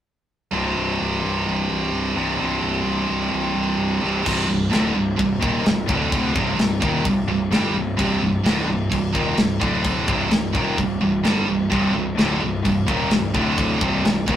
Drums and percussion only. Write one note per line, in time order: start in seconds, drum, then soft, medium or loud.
4.26 kick medium
4.26 crash loud
4.26 crash medium
4.73 snare loud
4.73 crash medium
5.19 kick medium
5.19 crash medium
5.43 kick loud
5.66 snare loud
5.66 crash medium
5.89 kick loud
6.12 kick loud
6.12 crash medium
6.36 kick loud
6.59 snare loud
6.59 crash medium
6.82 kick loud
7.05 kick medium
7.05 crash medium
7.52 snare loud
7.52 crash medium
7.99 kick loud
7.99 crash medium
8.46 snare loud
8.46 crash medium
8.92 kick medium
8.92 crash medium
9.15 kick loud
9.38 snare loud
9.38 crash medium
9.62 kick loud
9.84 kick medium
9.84 crash medium
10.08 kick loud
10.31 snare loud
10.31 crash medium
10.55 kick loud
10.78 kick medium
10.78 crash medium
11.25 snare loud
11.25 crash medium
11.72 kick medium
11.72 crash soft
12.19 snare loud
12.19 crash medium
12.65 kick medium
12.65 crash medium
12.88 kick loud
13.11 snare loud
13.11 crash medium
13.35 kick loud
13.58 kick loud
13.58 crash medium
13.81 kick loud
14.05 snare loud
14.05 crash medium
14.28 kick loud